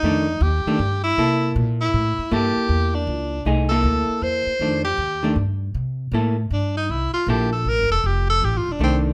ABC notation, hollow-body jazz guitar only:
X:1
M:3/4
L:1/8
Q:"Swing" 1/4=157
K:Cmix
V:1 name="Hollow-body jazz guitar"
[_E,A,D] z2 [E,A,D] z2 | [B,EA]4- [B,EA] z | [B,EA]4- [B,EA] z | [A,_E_A] [B,=E=A]4 z |
[_E,A,D] z2 [E,A,D] z2 | z2 [B,EA] z3 | z2 [B,EA] z3 | z4 [_E,A,D]2 |]